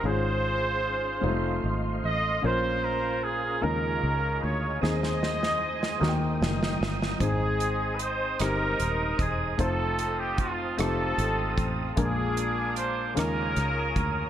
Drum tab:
HH |------------|------------|------------|x-x-x-x-x-x-|
SD |------------|------------|oooo-oo-oooo|------r-----|
BD |------------|------------|------------|o---------o-|

HH |x-x-x-x-x-x-|x-x-x-x-x-x-|
SD |------r-----|------r-r---|
BD |o---o-----o-|o---------o-|